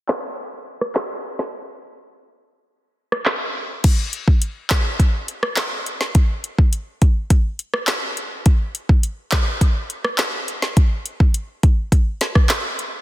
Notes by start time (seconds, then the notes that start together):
0.08 snare, clap
0.81 cross-stick
0.95 snare, clap
1.39 snare
3.12 cross-stick
3.26 snare, clap
3.84 kick, closed hi-hat, crash
4.13 closed hi-hat
4.28 kick
4.42 closed hi-hat
4.70 kick, snare, clap, closed hi-hat
5.00 kick, closed hi-hat
5.28 closed hi-hat
5.43 cross-stick
5.57 snare, clap, closed hi-hat
5.86 closed hi-hat
6.01 snare
6.15 kick, closed hi-hat
6.44 closed hi-hat
6.58 kick
6.73 closed hi-hat
7.02 kick, closed hi-hat
7.30 kick, closed hi-hat
7.59 closed hi-hat
7.74 cross-stick
7.87 snare, clap, closed hi-hat
8.17 closed hi-hat
8.46 kick, closed hi-hat
8.75 closed hi-hat
8.89 kick
9.03 closed hi-hat
9.32 kick, snare, clap, closed hi-hat
9.61 kick, closed hi-hat
9.90 closed hi-hat
10.05 cross-stick
10.18 snare, clap, closed hi-hat
10.48 closed hi-hat
10.62 snare
10.77 kick, closed hi-hat
11.06 closed hi-hat
11.20 kick
11.34 closed hi-hat
11.63 kick, closed hi-hat
11.92 kick, closed hi-hat
12.21 snare, closed hi-hat
12.35 kick, cross-stick
12.49 snare, clap, closed hi-hat
12.79 closed hi-hat